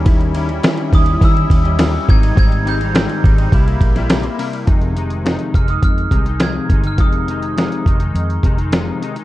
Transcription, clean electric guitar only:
\new Staff \with { instrumentName = "Clean electric guitar" } { \clef bass \time 4/4 \key f \minor \tempo 4 = 104 <ees g des' fes'>8 <ees g des' fes'>16 <g des' fes'>16 <ees g des' fes'>8 <ees g des' fes'>16 <g des' fes'>16 <ees g des' fes'>16 <g des' fes'>8 <g des' fes'>16 <ees g des' fes'>16 <g des' fes'>16 <ees g c' ees'>8 | <aes, ees g c' ees'>8 <ees g c' ees'>16 <g c' ees'>16 <aes, ees g c' ees'>8 <ees g c' ees'>16 <g c' ees'>16 <c g bes e'>16 <g bes e'>8 <g bes e'>16 <c g bes e'>16 <g bes e'>16 <c g bes e'>8 | <f, c ees aes ees'>8 <c ees aes ees'>8 <f, c ees aes ees'>8 <c ees aes ees'>16 <ees aes ees'>8. <c ees aes ees'>16 <ees aes ees'>16 <f, c ees aes ees'>8 <c ees aes ees'>16 <ees aes ees'>16 | <f, c ees aes ees'>8 <c ees aes ees'>8 <f, c ees aes ees'>8 <c ees aes ees'>16 <ees aes ees'>8. <c ees aes ees'>16 <ees aes ees'>16 <f, c ees aes ees'>8 <c ees aes ees'>16 <ees aes ees'>16 | }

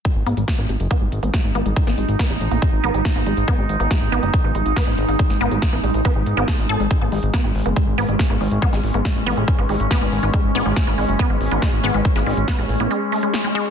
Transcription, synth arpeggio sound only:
\new Staff \with { instrumentName = "Synth arpeggio sound" } { \clef bass \time 4/4 \key gis \phrygian \tempo 4 = 140 gis16 r16 b16 gis16 r16 b16 gis16 r16 b16 gis16 r16 b16 gis16 r16 b16 gis16 | r16 b16 gis16 r16 b16 gis16 r16 b16 gis16 r16 b16 gis16 r16 b16 gis16 r16 | b16 gis16 r16 b16 gis16 r16 b16 gis16 r16 b16 gis16 r16 b16 gis16 r16 b16 | gis16 r16 b16 gis16 r16 b16 gis16 r16 b16 gis16 r16 b16 a'16 r16 a'16 gis16 |
r16 b16 gis16 r16 b16 gis16 r16 b16 gis16 r16 b16 gis16 r16 b16 gis16 r16 | b16 gis16 r16 b16 gis16 r16 b16 gis16 r16 b16 gis16 r16 b16 gis16 r16 b16 | gis16 r16 b16 gis16 r16 b16 gis16 r16 b16 gis16 r16 b16 gis16 r16 b16 gis16 | r16 b16 gis16 r16 b16 gis16 r16 b16 gis16 r16 a16 gis16 r16 gis16 gis16 r16 | }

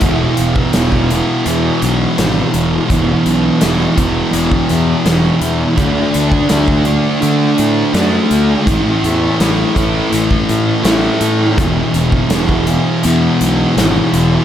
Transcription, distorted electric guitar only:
\new Staff \with { instrumentName = "Distorted electric guitar" } { \clef bass \time 4/4 \key e \mixolydian \tempo 4 = 83 <e, b, e>4 <e, b, e>8 <b, e>8 <e, b, e>4 <e, b, e>4 | <e, b, e>4 <e, b, e>8 <b, e>8 <e, b, e>4 <e, b, e>4 | <d a d'>4 <d a d'>8 <a d'>8 <d a d'>4 <d a d'>4 | <a, e a>4 <a, e a>8 <e a>8 <a, e a>4 <a, e a>4 |
<e, b, e>4 <e, b, e>8 <b, e>8 <e, b, e>4 <e, b, e>4 | }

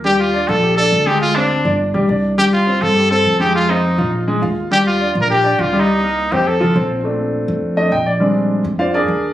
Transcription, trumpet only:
\new Staff \with { instrumentName = "Trumpet" } { \time 4/4 \key bes \major \tempo 4 = 206 g'8 f'4 a'4 a'4 g'8 | f'8 d'4. r2 | g'8 f'4 a'4 a'4 g'8 | f'8 ees'4. r2 |
g'8 f'8~ \tuplet 3/2 { f'8. r16 bes'8 } g'4 \tuplet 3/2 { f'4 ees'8~ } | ees'4. g'8 a'4. r8 | r1 | r1 | }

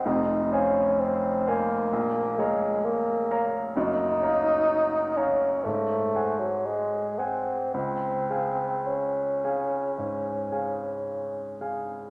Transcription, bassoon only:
\new Staff \with { instrumentName = "Bassoon" } { \time 4/4 \key des \major \tempo 4 = 61 ees'8 des'8 c'8 bes4 aes8 bes8. r16 | ees'4. des'8 a8. ges16 aes8 c'8 | c'4 des'2~ des'8 r8 | }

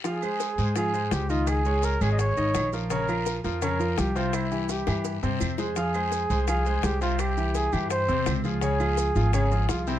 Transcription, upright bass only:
\new Staff \with { instrumentName = "Upright bass" } { \clef bass \time 4/4 \key f \minor \tempo 4 = 168 r4. aes,4. des,4~ | des,4. aes,,4 aes,,8 bes,,4~ | bes,,4. f,4. c,4~ | c,4. g,4 g,8 f,4~ |
f,4. c,4. c,4~ | c,4. g,4 e,8 des,4~ | des,4. aes,,4. c,4 | }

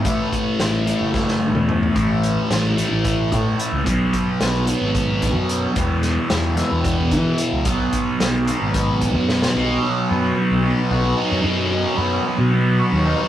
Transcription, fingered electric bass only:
\new Staff \with { instrumentName = "Fingered electric bass" } { \clef bass \time 7/8 \key b \mixolydian \tempo 4 = 111 a,,8 r8 a,,8. fis,,4 e,8. | a,,4 a,,8. a,,8. a,8 r16 cis,16 | b,,8 r8 b,,8. gis,,4 fis,8. | e,4 e,8. e,8. e8 r16 cis,16 |
b,,8 r8 b,,8. gis,,4 fis,8. | b,,8 r8 fis,8 r16 b,,8 r16 b,,8 r16 fis,16 | fis,4 fis,8 r16 b,4 dis,8 r16 | }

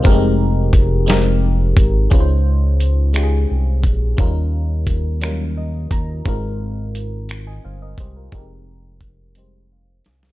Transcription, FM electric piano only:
\new Staff \with { instrumentName = "FM electric piano" } { \time 6/8 \key f \minor \tempo 4. = 58 << { f'16 r2 r8. | r2. | r2 ees''8 bes''8 | r4. r16 <ees'' aes''>16 <c'' f''>16 <bes' ees''>16 <g' c''>16 <f' bes'>16~ |
<f' bes'>16 r4. r16 f''8 aes''8 | } \\ { <g aes c' ees' g' bes'>4. <aes c' ees' g' bes'>4. | <aes des' ees' f' b' c''>4. <aes des' ees' f' g' aes'>4. | <g des' ees' f' bes'>4. <ges g des' ees' f' bes'>4. | <aes c' ees' f' bes'>4. r4. |
<aes c' ees' g' bes'>4. <g aes c' ees' g' c''>4. | } >> }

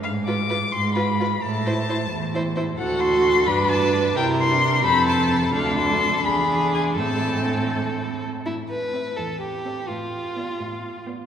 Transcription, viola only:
\new Staff \with { instrumentName = "Viola" } { \time 6/8 \key a \minor \tempo 4. = 86 r8 eis'8 eis'8 r8 eis'8 eis'8 | r8 e'8 e'8 r8 e'8 e'8 | fis'4. d'4. | e'8. d'8. c'4. |
d'4. d'4. | c'2~ c'8 r8 | r4 c'8 r4 c'8 | r4 b8 r4 b8 | }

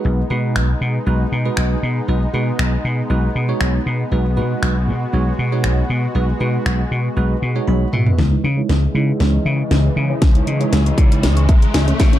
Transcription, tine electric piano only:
\new Staff \with { instrumentName = "Tine electric piano" } { \time 4/4 \key cis \minor \tempo 4 = 118 << { r1 | r1 | r1 | r2. b''8 e''8 |
r1 | r2 r8 ais''8 gis''8 fis''8 | } \\ { <gis dis' fis' b'>16 r16 <gis dis' fis' b'>8. r8. <gis dis' fis' b'>16 r8 <gis dis' fis' b'>8 r8. | <gis dis' fis' b'>16 r16 <gis dis' fis' b'>8. r8. <gis dis' fis' b'>16 r8 <gis dis' fis' cis''>8 r8. | <gis dis' fis' b'>16 r16 <gis dis' fis' b'>8. r8. <gis dis' fis' cis''>16 r8 <gis dis' fis' cis''>8 r8. | <gis dis' fis' b'>16 r16 <gis dis' fis' b'>8. r8. <gis dis' fis' b'>16 r8 <gis dis' fis' cis''>8 r8. |
<e' cis''>16 <gis dis' e' b'>16 r16 <gis dis' e' cis''>16 r8 <gis dis' e' cis''>4 r4. | <e' b'>16 <gis dis' e' cis''>16 r16 <gis dis' e' cis''>16 r8 <gis dis' e' cis''>4 r4. | } >> }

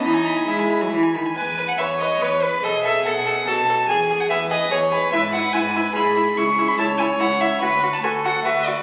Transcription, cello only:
\new Staff \with { instrumentName = "Cello" } { \clef bass \time 3/4 \key e \major \tempo 4 = 144 dis'4 e'4 r4 | e,4 e,4 e,4 | b,4 b,4 b,4 | e,4 e,4 e,4 |
gis,4 gis,4 gis,4 | \key cis \phrygian cis,4 cis,4 cis,4 | d,4 d,4 d,4 | }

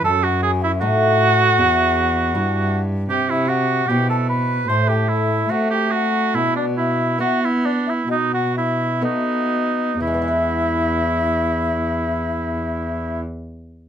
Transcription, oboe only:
\new Staff \with { instrumentName = "Oboe" } { \time 4/4 \key b \phrygian \tempo 4 = 71 a'16 fis'16 gis'16 e'16 fis'2~ fis'8. r16 | g'16 e'16 fis'8 g'16 a'16 b'8 c''16 g'16 e'8 fis'16 g'16 fis'8 | e'16 d'16 e'8 fis'16 e'16 d'16 e'16 dis'16 fis'16 e'8 dis'4 | e'1 | }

